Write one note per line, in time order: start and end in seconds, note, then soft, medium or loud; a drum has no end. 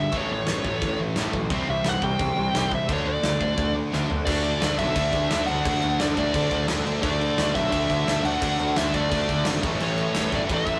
0.00 0.11 G2 medium
0.00 0.13 G2 medium
0.00 0.11 D3 medium
0.00 0.11 G3 medium
0.00 0.17 E5 loud
0.12 0.24 A1 loud
0.12 0.29 A2 medium
0.12 0.29 E3 medium
0.12 0.30 A3 medium
0.12 kick loud
0.12 crash medium
0.17 0.32 C#5 loud
0.30 0.41 A1 medium
0.30 0.45 A2 medium
0.30 0.46 E3 medium
0.30 0.99 C#5 loud
0.47 0.59 A1 medium
0.47 0.63 A2 medium
0.47 0.63 E3 medium
0.47 snare loud
0.47 crash medium
0.63 0.75 A1 medium
0.63 0.80 A2 medium
0.63 0.81 E3 medium
0.63 1.49 A3 medium
0.63 kick medium
0.82 1.03 A1 loud
0.82 0.97 A2 medium
0.82 0.97 E3 medium
0.82 kick loud
0.82 crash medium
1.00 1.15 A2 medium
1.00 1.15 E3 medium
1.16 1.27 A1 loud
1.16 1.33 A2 medium
1.16 1.33 E3 loud
1.16 1.33 A3 loud
1.16 snare loud
1.16 crash medium
1.33 1.45 B1 medium
1.33 1.49 A2 medium
1.33 1.50 E3 medium
1.33 kick medium
1.50 1.61 C2 medium
1.50 1.67 C3 loud
1.50 1.67 E3 medium
1.50 1.68 G3 loud
1.50 1.67 C4 loud
1.50 kick loud
1.50 crash medium
1.54 2.00 C4 loud
1.68 1.79 C2 medium
1.68 1.84 C3 medium
1.68 1.84 E3 medium
1.68 1.84 G3 medium
1.68 1.88 E5 loud
1.84 1.96 C2 loud
1.84 2.01 C3 medium
1.84 2.01 E3 medium
1.84 2.01 G3 medium
1.84 2.05 F#5 medium
1.84 snare loud
1.84 crash medium
2.01 2.13 C2 loud
2.01 2.18 C3 medium
2.01 2.18 E3 medium
2.01 2.18 G3 medium
2.01 2.88 G3 medium
2.01 2.87 C4 medium
2.01 2.71 G5 loud
2.01 kick medium
2.19 2.30 C2 loud
2.19 2.34 C3 medium
2.19 2.35 E3 loud
2.19 2.36 G3 loud
2.19 kick loud
2.19 crash medium
2.36 2.48 C2 medium
2.36 2.52 C3 medium
2.36 2.52 E3 medium
2.36 2.53 G3 medium
2.54 2.76 C2 loud
2.54 2.70 C3 medium
2.54 2.71 E3 loud
2.54 2.71 G3 loud
2.54 2.71 C4 loud
2.54 snare loud
2.54 crash medium
2.71 2.87 C3 medium
2.71 2.88 E3 medium
2.71 2.87 G3 medium
2.71 2.90 E5 medium
2.71 kick loud
2.88 2.99 D2 loud
2.88 3.05 D3 medium
2.88 3.05 A3 medium
2.88 3.05 D4 medium
2.88 kick loud
2.88 crash medium
2.93 3.08 C#5 loud
3.05 3.16 D2 medium
3.05 3.22 D3 medium
3.05 3.22 A3 medium
3.05 3.74 D5 loud
3.23 3.34 D2 medium
3.23 3.39 D3 medium
3.23 3.39 A3 medium
3.23 snare loud
3.23 crash medium
3.40 3.52 D2 medium
3.40 3.56 D3 medium
3.40 3.56 A3 medium
3.40 4.26 D4 loud
3.40 kick loud
3.57 3.79 D2 medium
3.57 3.73 D3 medium
3.57 3.73 A3 medium
3.57 kick loud
3.57 crash medium
3.75 3.90 D3 medium
3.75 3.91 A3 medium
3.92 4.04 D2 medium
3.92 4.08 D3 loud
3.92 4.09 A3 loud
3.92 4.09 D4 loud
3.92 snare medium
4.10 4.21 D2 loud
4.10 4.24 D3 medium
4.10 4.25 A3 medium
4.10 floor tom medium
4.25 4.52 D2 loud
4.25 4.60 D3 medium
4.25 4.61 A3 loud
4.25 4.61 D4 loud
4.25 4.61 F#4 loud
4.25 4.62 A4 medium
4.25 4.78 D5 medium
4.25 kick loud
4.25 crash loud
4.44 crash medium
4.60 4.75 D2 medium
4.60 4.78 D3 medium
4.60 4.79 A3 medium
4.60 4.79 D4 loud
4.60 4.79 F#4 loud
4.60 4.80 A4 medium
4.60 snare loud
4.60 crash medium
4.78 4.92 B1 loud
4.78 4.95 D3 medium
4.78 4.96 A3 medium
4.78 4.96 D4 medium
4.78 4.96 F#4 medium
4.78 4.97 A4 loud
4.78 5.50 E5 medium
4.78 kick medium
4.78 crash medium
4.95 5.09 D2 loud
4.95 5.29 D3 loud
4.95 5.30 A3 loud
4.95 5.30 D4 loud
4.95 5.31 F#4 loud
4.95 5.31 A4 loud
4.95 kick loud
4.95 crash medium
5.12 5.26 D2 loud
5.12 kick loud
5.12 crash medium
5.30 5.44 D2 loud
5.30 5.47 D3 medium
5.30 5.47 A3 loud
5.30 5.48 D4 medium
5.30 5.48 F#4 loud
5.30 5.49 A4 loud
5.30 snare loud
5.30 crash medium
5.47 5.62 D2 loud
5.47 5.64 D3 loud
5.47 5.65 A3 loud
5.47 5.66 D4 loud
5.47 5.66 F#4 loud
5.47 5.67 A4 loud
5.47 6.01 F#5 loud
5.47 crash medium
5.65 5.78 D2 medium
5.65 5.99 D3 loud
5.65 6.00 A3 loud
5.65 6.01 D4 loud
5.65 6.01 F#4 loud
5.65 6.01 A4 loud
5.65 kick loud
5.65 crash loud
5.82 5.96 D2 loud
5.82 crash medium
6.00 6.12 D2 loud
6.00 6.17 D3 medium
6.00 6.17 A3 medium
6.00 6.18 D4 loud
6.00 6.18 F#4 medium
6.00 6.19 A4 loud
6.00 6.05 D5 medium
6.00 snare loud
6.00 crash medium
6.17 6.30 D2 medium
6.17 6.33 D3 medium
6.17 6.33 A3 medium
6.17 6.34 D4 medium
6.17 6.34 F#4 loud
6.17 6.35 A4 medium
6.17 6.66 D5 medium
6.17 kick medium
6.17 crash medium
6.34 6.47 D2 loud
6.34 6.66 D3 loud
6.34 6.67 A3 loud
6.34 6.67 D4 loud
6.34 6.68 F#4 loud
6.34 6.69 A4 loud
6.34 kick loud
6.34 crash medium
6.51 6.64 D2 loud
6.51 kick medium
6.51 crash medium
6.67 6.82 D2 loud
6.67 6.83 D3 loud
6.67 6.84 A3 loud
6.67 6.85 D4 loud
6.67 6.85 F#4 loud
6.67 6.85 A4 loud
6.67 snare loud
6.67 crash medium
6.84 6.99 D2 loud
6.84 7.01 D3 medium
6.84 7.01 A3 loud
6.84 7.02 D4 medium
6.84 7.03 F#4 loud
6.84 7.03 A4 loud
6.84 crash medium
7.01 7.29 D2 loud
7.01 7.35 D3 loud
7.01 7.36 A3 loud
7.01 7.36 D4 loud
7.01 7.37 F#4 loud
7.01 7.37 A4 loud
7.01 7.55 D5 medium
7.01 kick loud
7.01 crash medium
7.21 crash medium
7.36 7.51 D2 loud
7.36 7.52 D3 medium
7.36 7.53 A3 medium
7.36 7.53 D4 loud
7.36 7.53 F#4 loud
7.36 7.55 A4 loud
7.36 snare loud
7.36 crash medium
7.53 7.68 B1 loud
7.53 7.68 D3 medium
7.53 7.70 A3 medium
7.53 7.69 D4 medium
7.53 7.70 F#4 medium
7.53 7.71 A4 medium
7.53 8.26 E5 medium
7.53 kick medium
7.53 crash medium
7.69 7.85 D2 loud
7.69 8.03 D3 loud
7.69 8.05 A3 loud
7.69 8.04 D4 loud
7.69 8.05 F#4 loud
7.69 8.06 A4 loud
7.69 kick loud
7.69 crash medium
7.74 8.07 D3 loud
7.74 8.08 A3 loud
7.90 8.03 D2 loud
7.90 kick medium
7.90 crash medium
8.05 8.20 D2 loud
8.05 8.23 D3 medium
8.05 8.24 A3 loud
8.05 8.24 D4 loud
8.05 8.25 F#4 loud
8.05 8.26 A4 loud
8.05 snare loud
8.05 crash loud
8.23 8.36 D2 loud
8.23 8.39 D3 loud
8.23 8.41 A3 medium
8.23 8.41 D4 loud
8.23 8.41 F#4 loud
8.23 8.42 A4 loud
8.23 8.78 F#5 loud
8.23 crash medium
8.41 8.55 D2 medium
8.41 8.75 D3 loud
8.41 8.77 A3 medium
8.41 8.77 D4 loud
8.41 8.77 F#4 loud
8.41 8.78 A4 loud
8.41 kick loud
8.41 crash loud
8.59 8.72 D2 medium
8.59 crash medium
8.76 8.90 D2 medium
8.76 8.92 D3 medium
8.76 8.94 A3 medium
8.76 8.93 D4 medium
8.76 8.93 F#4 medium
8.76 8.95 A4 loud
8.76 8.94 E5 medium
8.76 snare loud
8.76 crash medium
8.93 9.07 D2 loud
8.93 9.09 D3 medium
8.93 9.11 A3 medium
8.93 9.11 D4 loud
8.93 9.11 F#4 medium
8.93 9.12 A4 loud
8.93 9.46 D5 medium
8.93 kick medium
8.93 crash medium
9.11 9.24 D2 loud
9.11 9.43 D3 loud
9.11 9.45 A3 loud
9.11 9.45 D4 loud
9.11 9.46 F#4 loud
9.11 9.46 A4 loud
9.11 kick loud
9.11 crash medium
9.29 9.42 D2 loud
9.29 kick medium
9.29 crash medium
9.45 9.59 G#1 loud
9.45 9.61 D3 loud
9.45 9.63 A3 loud
9.45 9.62 D4 loud
9.45 9.62 F#4 loud
9.45 9.64 A4 loud
9.45 snare loud
9.45 crash loud
9.62 9.76 A1 loud
9.62 9.78 A2 medium
9.62 9.79 E3 loud
9.62 9.79 A3 loud
9.62 9.80 C#4 loud
9.62 9.80 E4 loud
9.62 9.81 A4 loud
9.62 kick loud
9.62 crash medium
9.79 10.05 A1 loud
9.79 10.13 A2 loud
9.79 10.14 E3 loud
9.79 10.15 A3 medium
9.79 10.15 C#4 loud
9.79 10.15 E4 loud
9.79 10.16 A4 loud
9.79 crash medium
9.83 10.30 C#5 medium
9.98 crash medium
10.14 10.28 A1 medium
10.14 10.30 A2 medium
10.14 10.31 E3 medium
10.14 10.31 A3 loud
10.14 10.32 C#4 loud
10.14 10.33 E4 medium
10.14 10.33 A4 loud
10.14 snare loud
10.14 crash medium
10.30 10.45 G1 loud
10.30 10.46 A2 medium
10.30 10.47 E3 medium
10.30 10.47 A3 medium
10.30 10.48 C#4 medium
10.30 10.48 E4 medium
10.30 10.48 A4 medium
10.30 kick medium
10.30 crash medium
10.35 10.40 D5 medium
10.47 10.62 A1 loud
10.47 10.80 A2 loud
10.47 10.80 E3 loud
10.47 10.80 A3 loud
10.47 10.80 C#4 loud
10.47 10.80 E4 loud
10.47 10.80 A4 loud
10.47 kick loud
10.47 crash medium
10.54 10.80 E5 loud
10.67 10.80 A1 medium
10.67 kick medium
10.67 crash medium